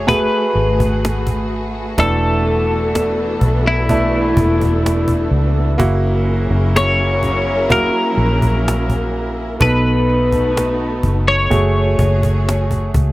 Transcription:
Already playing: F#1 A3 F#4 G#4
0.07 A3 F#4 G#4 B4, cajon bass
0.55 G#1
0.80 cajon bass
1.05 cajon slap
1.27 cajon bass
1.98 E1 E3 A3 B3 D4 E4 A4, cajon bass
2.95 cajon slap
3.41 B1, cajon bass
3.67 E4
3.89 A3 D4 E4, cajon bass
4.37 E1, cajon bass
4.62 cajon bass
4.86 cajon slap
5.08 cajon bass
5.31 C#2
5.78 F#1 F#3 A#3 C#4 E4 F#4 G#4 A#4, cajon bass
6.51 F#1
6.77 C#5, cajon slap
7.23 cajon bass
7.69 A#3 E4 F#4 A#4, cajon bass
8.18 A#1
8.42 cajon bass
8.68 cajon slap
8.90 cajon bass
9.60 B1 B2 A3 B3 D#4 A4 B4, cajon bass
10.32 cajon bass
10.57 cajon slap
11.03 F#1, cajon bass
11.28 C#5
11.50 F#1 A3 F#4 G#4, cajon bass
11.99 F#1, cajon bass
12.23 cajon bass
12.49 cajon slap
12.71 cajon bass
12.94 C#2, cajon bass

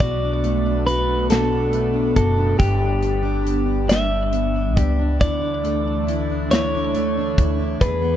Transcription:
Already playing: B3
0.00 B1 B2 A3 D4 F#4 D5, kick, closed hi-hat
0.22 D4
0.44 A3, closed hi-hat
0.66 D4
0.87 F#4 B4, closed hi-hat
1.09 D4
1.30 B2 F#4 A4, snare, closed hi-hat
1.53 D4
1.72 A3, closed hi-hat
1.94 D4
2.16 F#1 F#4 A4, kick, closed hi-hat
2.36 D4
2.57 G1 G2 G3 G4, kick, closed hi-hat
2.79 D4
3.01 B3, closed hi-hat
3.23 D4
3.43 G4, closed hi-hat
3.66 D4
3.87 G2 G4 E5, closed hi-hat
3.91 snare
4.11 D4
4.32 B3, closed hi-hat
4.55 D4
4.76 C#2 G4, kick, closed hi-hat
4.81 D5
4.99 D4
5.20 D2 D3 E3 A3 D4 E4 D5, kick, closed hi-hat
5.42 D4
5.64 A3, closed hi-hat
5.85 D4
6.07 E4, closed hi-hat
6.30 D4
6.51 D3 E4 C#5, snare, closed hi-hat
6.75 D4
6.95 A3, closed hi-hat
7.18 D4
7.38 D2 E4, kick, closed hi-hat
7.59 D4
7.81 E2 G#3 B3 G#4 B4, kick, closed hi-hat
8.02 B3

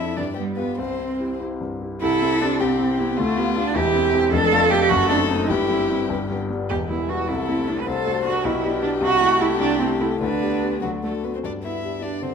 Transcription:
Already playing: F2 C4 E4 E5
0.00 D4 A4
0.16 G2 D4 D5
0.35 G3 B3 G4
0.56 B3 F4 G4 B4
0.78 C2 C4 C5
0.99 C4
1.19 E4 G4
1.40 E4 G4
1.61 G2
1.82 E4 G4
2.01 C2 C3 E4 A4
2.22 C4 E4 G4
2.40 C4 D4 E4 G4
2.60 C2 C3 C4 G4
2.80 C4 E4 G4
2.98 B3 C4 E4 G4
3.17 D2 D3 A3 F4
3.37 B3 F4 G4
3.56 B3 D4 F4 G4
3.74 E1 E2 E4 G4
3.94 C4 E4 G4
4.13 C4 E4 G4
4.32 F1 F2 D4 A4
4.52 A3 D4 F4
4.70 A3 D4 F4 G4
4.89 F#1 F#2 F#4 A4
5.09 A3 C4 D4 D#4
5.29 A3 C4 D#4
5.48 G1 G2 E4 G4
5.69 G3 C4 E4
5.90 G3 C4 E4
6.10 G1 G2
6.31 G3 B3 D4
6.50 G3 B3 D4
6.69 E1 E2 G4
6.89 G3 B3 E4
7.09 G3 B3 E4 F#4
7.28 C2 C3 E4 A4
7.48 A3 C4 E4
7.67 A3 C4 D4 E4
7.80 B4
7.86 C2 C3 A4 C5
8.05 A3 D4 F#4
8.24 A3 D4 F#4
8.44 B1 B2 E4 G4
8.63 B3 D4 G4
8.82 B3 D4 G4
9.01 C2 C3 F#4
9.21 A3 E4 A4
9.40 A3 E4 A4
9.59 C2 C3 D4
9.79 A3 C4 E4 A4
10.00 A3 E4 A4
10.21 D2 D3 D4 B4
10.41 B3 D4 G4
10.61 B3 D4 G4
10.82 D2 D3 F#3 F#4
11.03 A3 D4 F#4 A4
11.24 A3 B3 D4 F#4 B4
11.35 C4 C5
11.44 G2 D4 D5
11.63 B3 E4 E5
11.83 D4 G4
12.02 D4 G4 D5
12.22 D3 C4 C5

